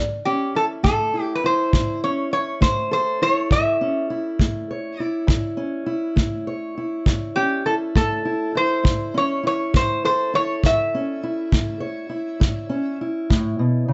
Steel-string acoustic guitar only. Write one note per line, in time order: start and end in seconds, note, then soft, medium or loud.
0.00 0.49 A2 medium
0.26 2.04 C#4 medium
0.55 1.13 E4 medium
0.83 1.37 A3 medium
1.14 1.44 E4 medium
1.44 2.32 E4 medium
1.74 2.27 A2 medium
2.04 3.81 C#4 medium
2.33 3.21 E4 medium
2.61 3.15 A3 medium
2.91 4.70 A4 medium
3.22 4.10 E4 medium
3.52 4.05 A2 medium
3.81 5.57 C#4 medium
4.10 5.00 E4 medium
4.40 4.94 A3 medium
4.71 6.47 C#5 medium
5.00 5.86 E4 medium
5.27 5.81 A2 medium
5.57 7.36 C#4 medium
5.86 6.77 E4 medium
6.16 6.70 A3 medium
6.47 9.97 C#5 medium
6.78 7.65 E4 soft
7.06 7.60 A2 medium
7.37 9.13 C#4 medium
7.66 8.25 E4 medium
7.96 8.49 A3 medium
8.25 8.55 E4 medium
8.55 9.42 E4 medium
8.83 9.37 A2 medium
9.14 10.59 C#4 medium
9.43 10.32 E4 medium
9.74 10.27 A3 medium
10.04 11.80 A4 medium
10.34 11.22 E4 medium
10.63 11.16 A2 medium
10.95 12.68 C#4 medium
11.23 12.08 E4 medium
11.52 12.05 A3 medium
11.80 13.93 C#5 medium
12.10 12.99 E4 medium
12.40 12.94 A2 medium
12.69 13.93 C#4 medium
13.01 13.93 E4 medium
13.30 13.59 A2 medium
13.59 13.88 B2 medium
13.88 13.93 C#3 medium